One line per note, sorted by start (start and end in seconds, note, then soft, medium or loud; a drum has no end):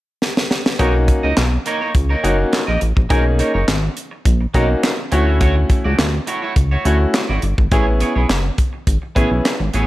0.22 snare medium
0.37 snare medium
0.51 snare medium
0.66 snare loud
0.79 1.11 B1 loud
0.79 1.27 A#3 medium
0.79 0.94 A#3 medium
0.79 1.27 C#4 medium
0.79 1.27 D#4 medium
0.79 0.94 D#4 medium
0.79 1.27 F#4 medium
0.79 0.94 A#4 medium
0.79 0.93 C#5 medium
0.79 kick loud
0.79 closed hi-hat medium
0.94 muted clean electric guitar stroke soft
1.08 muted clean electric guitar stroke soft
1.08 kick loud
1.08 closed hi-hat medium
1.23 1.34 C#2 medium
1.23 1.35 A#3 medium
1.23 1.35 D#4 medium
1.23 1.34 A#4 medium
1.23 1.34 D#5 medium
1.37 1.58 B1 medium
1.37 snare medium
1.37 clap medium
1.37 closed hi-hat medium
1.52 muted clean electric guitar stroke soft
1.66 1.81 A#3 medium
1.66 1.81 D#4 medium
1.66 1.80 A#4 medium
1.66 1.80 C#5 medium
1.66 closed hi-hat medium
1.81 1.93 A#3 medium
1.81 1.92 D#4 medium
1.81 1.92 A#4 medium
1.81 1.92 C#5 medium
1.95 2.16 C#2 medium
1.95 kick loud
1.95 closed hi-hat medium
2.09 2.22 A#3 medium
2.09 2.22 D#4 medium
2.09 2.23 A#4 medium
2.09 2.23 C#5 medium
2.23 2.45 F#1 medium
2.23 2.35 A#3 medium
2.23 2.59 A#3 medium
2.23 2.59 C#4 medium
2.23 2.36 D#4 medium
2.23 2.59 D#4 medium
2.23 2.59 F#4 medium
2.23 2.36 A#4 medium
2.23 2.36 C#5 medium
2.23 closed hi-hat medium
2.52 muted clean electric guitar stroke soft
2.52 snare loud
2.52 clap medium
2.52 closed hi-hat medium
2.67 2.78 A#1 medium
2.67 2.80 A#3 medium
2.67 2.80 D#4 medium
2.67 2.80 A#4 medium
2.67 2.81 D#5 medium
2.81 2.93 A1 loud
2.81 muted clean electric guitar stroke soft
2.81 closed hi-hat medium
2.96 3.06 A#1 medium
2.96 muted clean electric guitar stroke soft
2.96 kick medium
3.09 3.42 B1 loud
3.09 3.25 A#3 medium
3.09 3.58 A#3 medium
3.09 3.58 C#4 medium
3.09 3.25 D#4 medium
3.09 3.58 D#4 medium
3.09 3.58 G#4 medium
3.09 3.24 A#4 medium
3.09 3.24 C#5 loud
3.09 kick loud
3.09 closed hi-hat medium
3.25 muted clean electric guitar stroke soft
3.39 3.51 A#3 medium
3.39 3.51 D#4 medium
3.39 3.51 A#4 medium
3.39 3.52 C#5 medium
3.39 closed hi-hat medium
3.54 3.65 F#1 medium
3.54 3.66 A#3 soft
3.54 3.65 D#4 soft
3.54 3.65 A#4 soft
3.54 3.65 C#5 medium
3.68 3.89 G#1 medium
3.68 muted clean electric guitar stroke soft
3.68 snare loud
3.68 clap medium
3.68 closed hi-hat medium
3.83 muted clean electric guitar stroke soft
3.97 closed hi-hat medium
4.11 muted clean electric guitar stroke medium
4.25 4.46 A#1 loud
4.25 kick loud
4.25 closed hi-hat medium
4.41 muted clean electric guitar stroke soft
4.54 4.75 B1 loud
4.54 4.69 A#3 medium
4.54 4.90 A#3 medium
4.54 4.90 C#4 medium
4.54 4.69 D#4 medium
4.54 4.90 D#4 medium
4.54 4.90 F#4 medium
4.54 4.68 A#4 medium
4.54 4.68 C#5 medium
4.54 kick medium
4.54 closed hi-hat medium
4.69 muted clean electric guitar stroke soft
4.83 muted clean electric guitar stroke soft
4.83 snare loud
4.83 clap medium
4.83 closed hi-hat medium
4.98 muted clean electric guitar stroke soft
5.11 5.65 D2 loud
5.11 5.27 A3 medium
5.11 6.05 A3 medium
5.11 6.05 C#4 medium
5.11 5.26 E4 medium
5.11 6.05 E4 medium
5.11 5.26 F#4 medium
5.11 6.05 F#4 loud
5.11 5.25 C#5 medium
5.11 closed hi-hat medium
5.26 5.38 A3 soft
5.26 5.38 E4 soft
5.26 5.38 F#4 medium
5.26 5.38 C#5 medium
5.40 5.56 A3 medium
5.40 5.56 E4 medium
5.40 5.55 F#4 medium
5.40 5.55 C#5 medium
5.40 kick loud
5.40 closed hi-hat medium
5.56 muted clean electric guitar stroke soft
5.70 muted clean electric guitar stroke soft
5.70 kick loud
5.70 closed hi-hat medium
5.84 5.95 C#2 medium
5.84 5.96 A3 soft
5.84 5.96 E4 medium
5.84 5.96 F#4 medium
5.84 5.95 D5 medium
5.99 6.20 D2 medium
5.99 snare loud
5.99 clap medium
5.99 closed hi-hat medium
6.13 muted clean electric guitar stroke soft
6.27 6.42 A3 medium
6.27 6.42 E4 medium
6.27 6.42 F#4 medium
6.27 6.41 C#5 medium
6.27 closed hi-hat medium
6.42 6.54 A3 medium
6.42 6.54 E4 medium
6.42 6.53 F#4 medium
6.42 6.53 C#5 medium
6.56 6.77 C#2 medium
6.56 muted clean electric guitar stroke soft
6.56 kick loud
6.56 closed hi-hat medium
6.71 6.84 A3 medium
6.71 6.84 E4 medium
6.71 6.85 F#4 medium
6.71 6.85 C#5 medium
6.85 7.06 D2 medium
6.85 7.20 A3 medium
6.85 6.97 A3 medium
6.85 7.21 C#4 medium
6.85 7.21 E4 medium
6.85 6.97 E4 medium
6.85 7.21 F#4 medium
6.85 6.98 F#4 medium
6.85 6.98 C#5 medium
6.85 closed hi-hat medium
7.00 muted clean electric guitar stroke soft
7.14 muted clean electric guitar stroke soft
7.14 snare loud
7.14 clap medium
7.14 closed hi-hat medium
7.29 7.39 G#1 medium
7.29 7.42 A3 medium
7.29 7.42 E4 medium
7.29 7.43 F#4 medium
7.29 7.43 D5 medium
7.42 7.54 G1 medium
7.42 muted clean electric guitar stroke soft
7.42 closed hi-hat medium
7.58 7.68 G#1 medium
7.58 muted clean electric guitar stroke soft
7.58 kick loud
7.71 8.03 A1 loud
7.71 8.19 B3 medium
7.71 7.87 B3 medium
7.71 8.19 C#4 medium
7.71 8.19 E4 medium
7.71 7.87 E4 medium
7.71 8.20 G#4 medium
7.71 7.86 G#4 medium
7.71 7.86 C#5 medium
7.71 kick loud
7.71 closed hi-hat medium
7.87 muted clean electric guitar stroke soft
8.00 8.12 B3 medium
8.00 8.13 E4 medium
8.00 8.13 G#4 medium
8.00 8.13 C#5 medium
8.00 closed hi-hat medium
8.15 8.26 B1 medium
8.15 8.27 B3 soft
8.15 8.27 E4 medium
8.15 8.27 G#4 medium
8.15 8.26 C#5 medium
8.29 8.50 F#1 medium
8.29 muted clean electric guitar stroke soft
8.29 snare medium
8.29 clap medium
8.29 closed hi-hat medium
8.44 muted clean electric guitar stroke soft
8.58 kick medium
8.58 closed hi-hat medium
8.73 muted clean electric guitar stroke soft
8.87 8.98 G#1 loud
8.87 kick loud
8.87 closed hi-hat loud
9.02 muted clean electric guitar stroke soft
9.15 9.27 A1 medium
9.15 9.31 B3 medium
9.15 9.51 B3 medium
9.15 9.51 C#4 medium
9.15 9.30 E4 medium
9.15 9.52 E4 medium
9.15 9.52 G#4 medium
9.15 9.30 G#4 medium
9.15 9.29 C#5 medium
9.15 kick medium
9.15 closed hi-hat medium
9.30 9.41 B1 medium
9.30 muted clean electric guitar stroke soft
9.44 muted clean electric guitar stroke soft
9.44 snare loud
9.44 clap medium
9.44 closed hi-hat medium
9.60 9.70 G#1 medium
9.60 muted clean electric guitar stroke soft
9.74 9.85 A1 medium
9.74 9.87 B3 medium
9.74 9.87 E4 medium
9.74 9.87 G#4 medium
9.74 9.87 C#5 medium
9.74 closed hi-hat medium